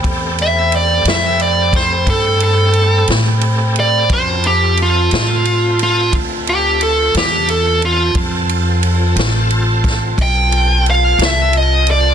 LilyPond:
<<
  \new Staff \with { instrumentName = "Glass harmonica" } { \time 12/8 \key f \lydian \tempo 4. = 59 <c'' g'' b''>1. | <f' a''>1.~ | <f' a''>1. | }
  \new Staff \with { instrumentName = "Lead electric guitar" } { \time 12/8 \key f \lydian r8 e''8 d''8 e''8 d''8 c''8 a'8 a'4 r4 d''8 | c''8 g'8 f'4. f'8 r8 g'8 a'8 g'8 a'8 f'8 | r2. g''4 f''8 e''8 dis''8 d''8 | }
  \new Staff \with { instrumentName = "Tonewheel organ" } { \time 12/8 \key f \lydian <a c' g' a'>1. | <cis' f' fis' bes'>8 <c' f' a' e''>1~ <c' f' a' e''>4. | <c' f' a'>1. | }
  \new Staff \with { instrumentName = "Upright bass" } { \clef bass \time 12/8 \key f \lydian e,4. f,4. g,4. a,4. | f,4. a,4. d,4. e,4. | f,4. a,,4. b,,4. c,4. | }
  \new DrumStaff \with { instrumentName = "Drums" } \drummode { \time 12/8 <bd cymr>8 cymr8 cymr8 <cymr sn>8 cymr8 <bd cymr sn>8 <bd cymr>8 cymr8 cymr8 <cymr sn>8 cymr8 cymr8 | <bd cymr>8 cymr8 cymr8 <cymr sn>8 cymr8 cymr8 <bd cymr>8 cymr8 cymr8 <cymr sn>8 cymr8 cymr8 | <bd cymr>8 cymr8 cymr8 <cymr sn>8 cymr8 <bd cymr sn>8 <bd cymr>8 cymr8 cymr8 <cymr sn>8 cymr8 cymr8 | }
>>